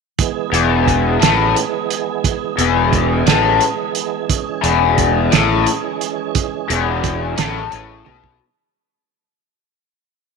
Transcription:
0.19 8.37 E3 medium
0.19 8.37 G#3 medium
0.19 4.26 B3 medium
0.19 8.37 G#4 medium
0.19 kick loud
0.19 closed hi-hat medium
0.52 1.17 E1 medium
0.52 1.21 E2 medium
0.52 closed hi-hat medium
0.88 kick medium
0.88 closed hi-hat medium
1.20 1.53 A1 medium
1.20 1.54 A2 loud
1.20 snare loud
1.20 closed hi-hat medium
1.56 closed hi-hat medium
1.90 closed hi-hat medium
2.24 kick loud
2.24 closed hi-hat medium
2.58 3.23 E1 medium
2.58 3.26 E2 medium
2.58 closed hi-hat medium
2.93 kick medium
2.93 closed hi-hat medium
3.26 3.58 A1 medium
3.26 3.60 A2 loud
3.26 snare loud
3.26 closed hi-hat medium
3.61 closed hi-hat medium
3.95 closed hi-hat medium
4.30 8.36 C#4 medium
4.30 kick loud
4.30 closed hi-hat medium
4.63 5.28 E1 medium
4.63 5.31 E2 loud
4.63 closed hi-hat medium
4.98 kick medium
4.98 closed hi-hat medium
5.31 5.64 A1 medium
5.31 5.65 A2 loud
5.31 snare loud
5.31 closed hi-hat medium
5.67 closed hi-hat medium
6.01 closed hi-hat medium
6.35 kick loud
6.35 closed hi-hat medium
6.70 7.34 E1 medium
6.70 7.37 E2 medium
6.70 closed hi-hat medium
7.04 kick medium
7.04 closed hi-hat medium
7.37 7.70 A1 medium
7.37 7.70 A2 loud
7.37 snare loud
7.37 closed hi-hat loud
7.71 8.04 A1 medium
7.71 8.05 A2 medium
7.71 closed hi-hat medium
8.05 8.39 B1 medium
8.05 8.39 B2 medium
8.05 high tom medium
8.24 kick medium

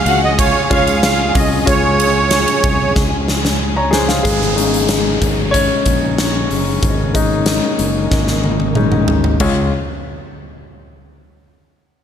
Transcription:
0.00 4.27 C#3 medium
0.00 4.21 G#3 medium
0.00 4.21 C#4 medium
0.00 0.70 F4 medium
0.00 0.70 G#4 medium
0.00 4.21 G#4 medium
0.00 0.71 C#5 medium
0.00 0.20 F5 loud
0.06 0.51 C#2 loud
0.06 0.32 F#4 loud
0.06 0.32 F#5 loud
0.06 ride soft
0.24 0.38 D#5 medium
0.38 0.64 F4 medium
0.38 0.72 C#5 medium
0.38 0.64 F5 loud
0.38 kick loud
0.38 ride medium
0.70 1.31 C#2 medium
0.70 0.96 C#4 loud
0.70 1.42 F4 medium
0.70 1.42 G#4 medium
0.70 0.96 C#5 loud
0.70 1.42 C#5 medium
0.70 1.01 F5 medium
0.70 kick loud
0.70 ride medium
0.87 ride medium
1.03 1.36 F5 medium
1.03 snare loud
1.03 ride medium
1.35 1.65 C2 medium
1.35 2.27 C#4 medium
1.35 1.60 D#5 medium
1.35 kick loud
1.35 open hi-hat medium
1.35 ride soft
1.61 1.68 D#5 medium
1.66 2.44 C#2 loud
1.66 2.62 F4 medium
1.66 2.62 G#4 medium
1.66 2.62 C#5 medium
1.66 2.93 C#5 medium
1.66 kick loud
1.66 hi-hat pedal medium
1.66 ride medium
2.00 ride medium
2.31 snare loud
2.31 ride medium
2.48 ride medium
2.64 2.94 C2 medium
2.64 kick loud
2.64 ride medium
2.96 4.21 C#2 loud
2.96 kick medium
2.96 snare medium
3.28 snare medium
3.45 snare medium
3.76 3.92 C#5 medium
3.76 3.92 A#5 medium
3.91 4.23 G#3 medium
3.91 4.07 G#4 medium
3.91 4.08 C5 medium
3.91 4.08 G#5 medium
3.91 snare loud
4.08 4.22 G#4 medium
4.08 4.39 F5 medium
4.08 snare medium
4.23 5.18 G#1 medium
4.23 9.37 C#3 medium
4.23 6.80 G#3 medium
4.23 4.55 G#3 medium
4.23 9.37 D#4 medium
4.23 5.57 G#4 medium
4.23 kick medium
4.23 closed hi-hat medium
4.23 downlifter medium
4.42 snare soft
4.56 5.49 G#3 medium
4.56 5.49 C#4 soft
4.56 5.50 D#4 medium
4.56 closed hi-hat medium
4.74 closed hi-hat soft
4.89 snare loud
4.89 closed hi-hat medium
5.22 5.67 G#1 loud
5.22 kick medium
5.22 closed hi-hat medium
5.51 7.14 C#4 medium
5.51 8.71 C#5 loud
5.51 kick medium
5.51 closed hi-hat medium
5.86 6.46 A#1 medium
5.86 kick medium
5.86 closed hi-hat medium
6.18 snare loud
6.18 closed hi-hat medium
6.51 6.81 F#1 medium
6.51 open hi-hat medium
6.83 7.59 G#1 medium
6.83 9.38 A#3 medium
6.83 kick loud
6.83 closed hi-hat medium
7.14 7.58 G#3 medium
7.14 7.58 C#4 medium
7.14 7.58 D#4 medium
7.14 kick medium
7.14 closed hi-hat medium
7.46 snare loud
7.46 closed hi-hat medium
7.79 8.09 F#1 medium
7.79 closed hi-hat medium
8.11 9.37 G#1 medium
8.11 kick medium
8.11 snare soft
8.27 snare soft
8.44 high tom medium
8.60 high tom medium
8.75 9.05 G#3 medium
8.75 9.05 C#4 soft
8.75 9.05 D#4 medium
8.75 mid tom loud
8.92 mid tom medium
9.08 floor tom loud
9.24 floor tom medium
9.40 9.70 C#2 medium
9.40 9.71 C#3 medium
9.40 9.70 G#3 medium
9.40 9.71 G#3 medium
9.40 9.70 C#4 medium
9.40 9.71 F4 medium
9.40 9.70 C#5 medium
9.40 kick medium
9.40 crash medium

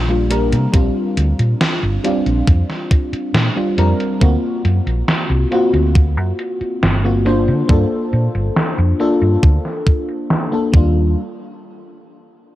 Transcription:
0.00 0.54 A#1 loud
0.00 0.08 G3 medium
0.00 0.09 A#3 medium
0.00 0.09 D4 medium
0.00 0.10 F4 loud
0.08 0.25 G3 medium
0.08 0.25 A#3 medium
0.08 0.25 D4 medium
0.08 0.26 F4 medium
0.30 0.68 G3 loud
0.30 0.69 A#3 medium
0.30 0.69 D4 medium
0.30 0.69 A#4 loud
0.30 closed hi-hat medium
0.52 0.66 C3 medium
0.52 closed hi-hat medium
0.72 0.88 A#1 loud
0.72 1.98 G3 medium
0.72 1.99 C4 medium
0.72 1.99 D4 medium
0.72 2.00 F4 loud
0.72 kick loud
0.72 closed hi-hat medium
1.17 1.31 D2 medium
1.17 closed hi-hat medium
1.39 1.53 A#2 loud
1.39 closed hi-hat medium
1.61 snare loud
1.61 closed hi-hat medium
1.83 1.97 G1 medium
2.04 2.19 G3 loud
2.04 2.19 C4 medium
2.04 2.19 D4 medium
2.04 2.20 F4 loud
2.04 closed hi-hat medium
2.26 2.40 A#1 medium
2.26 closed hi-hat medium
2.47 2.62 F2 medium
2.47 kick loud
2.47 closed hi-hat medium
2.70 snare soft
2.91 kick loud
2.91 closed hi-hat medium
3.13 muted fingered electric bass stroke soft
3.13 closed hi-hat medium
3.34 3.48 A#2 loud
3.34 snare loud
3.34 closed hi-hat medium
3.56 3.72 G3 medium
3.56 3.73 C4 medium
3.56 3.73 D4 medium
3.56 3.73 F4 medium
3.77 3.92 F2 medium
3.77 4.16 G3 loud
3.77 4.16 C4 medium
3.77 4.17 D4 medium
3.77 4.17 A#4 loud
3.77 closed hi-hat medium
4.00 closed hi-hat medium
4.20 4.36 D2 loud
4.20 5.46 A#3 loud
4.20 5.47 C4 medium
4.20 5.47 F4 medium
4.20 5.48 F#4 loud
4.20 kick loud
4.20 closed hi-hat medium
4.65 4.79 F#2 medium
4.65 closed hi-hat medium
4.86 5.01 A#1 loud
4.86 closed hi-hat medium
5.08 snare loud
5.08 closed hi-hat medium
5.30 5.44 C2 medium
5.51 5.67 A#3 loud
5.51 5.67 C4 medium
5.51 5.67 F4 medium
5.51 5.67 F#4 loud
5.51 closed hi-hat medium
5.73 6.17 D2 medium
5.73 closed hi-hat medium
5.95 kick loud
5.95 closed hi-hat medium
6.17 6.31 F#2 medium
6.39 closed hi-hat medium
6.61 muted fingered electric bass stroke soft
6.61 closed hi-hat medium
6.83 7.50 G1 loud
6.83 snare loud
6.83 closed hi-hat medium
7.04 7.20 A#3 medium
7.04 7.21 C4 medium
7.04 7.21 F4 medium
7.04 7.21 F#4 medium
7.25 7.64 A#3 loud
7.25 7.64 D4 medium
7.25 7.64 F4 medium
7.25 7.65 C5 loud
7.25 closed hi-hat medium
7.48 7.62 D3 medium
7.48 closed hi-hat medium
7.68 7.83 G2 loud
7.68 8.94 A#3 medium
7.68 8.94 D4 medium
7.68 8.95 F4 medium
7.68 8.95 A4 loud
7.68 kick loud
7.68 closed hi-hat medium
8.13 8.27 A#2 medium
8.13 closed hi-hat medium
8.35 8.49 G1 medium
8.35 closed hi-hat medium
8.56 snare loud
8.56 closed hi-hat medium
8.78 8.92 F2 loud
8.99 9.15 A#3 medium
8.99 9.15 D4 medium
8.99 9.15 F4 medium
8.99 9.15 A4 loud
8.99 closed hi-hat medium
9.21 9.36 G2 medium
9.21 closed hi-hat medium
9.43 9.57 D2 medium
9.43 kick loud
9.43 closed hi-hat medium
9.65 snare soft
9.86 kick loud
9.86 closed hi-hat medium
10.09 closed hi-hat soft
10.30 snare loud
10.30 closed hi-hat medium
10.52 10.68 A#3 medium
10.52 10.69 D4 medium
10.52 10.69 F4 medium
10.52 10.69 A4 medium
10.52 closed hi-hat soft
10.72 11.14 D#2 loud
10.72 11.05 G3 medium
10.72 11.06 A#3 medium
10.72 11.07 D4 medium
10.72 kick loud
10.77 11.08 F4 medium

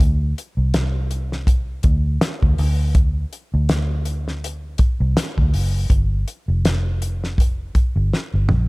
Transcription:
0.00 0.33 D2 loud
0.00 kick loud
0.00 closed hi-hat medium
0.38 closed hi-hat medium
0.57 1.80 C2 medium
0.74 snare loud
0.74 closed hi-hat medium
1.11 closed hi-hat medium
1.32 snare soft
1.47 kick medium
1.47 closed hi-hat medium
1.83 2.17 D2 loud
1.83 kick loud
1.83 closed hi-hat medium
2.21 snare loud
2.21 closed hi-hat loud
2.43 2.56 D2 medium
2.43 kick medium
2.58 3.24 D2 medium
2.58 open hi-hat medium
2.95 kick loud
2.95 closed hi-hat loud
3.33 closed hi-hat medium
3.54 4.76 D2 medium
3.69 snare loud
3.69 closed hi-hat medium
4.05 closed hi-hat medium
4.28 snare soft
4.44 closed hi-hat medium
4.78 muted fingered electric bass stroke medium
4.78 kick medium
4.78 closed hi-hat medium
5.00 5.14 C2 medium
5.17 snare loud
5.17 closed hi-hat loud
5.37 5.51 D2 medium
5.37 kick medium
5.53 5.86 F#1 medium
5.53 open hi-hat medium
5.90 6.23 G1 medium
5.90 kick loud
5.90 closed hi-hat medium
6.28 closed hi-hat medium
6.48 7.71 F1 medium
6.65 snare loud
6.65 closed hi-hat medium
7.02 closed hi-hat medium
7.24 snare soft
7.38 kick medium
7.38 closed hi-hat medium
7.75 muted fingered electric bass stroke soft
7.75 kick medium
7.75 closed hi-hat medium
7.96 8.10 G1 medium
8.13 snare medium
8.34 8.47 G1 medium
8.49 8.68 A#1 medium
8.49 mid tom medium

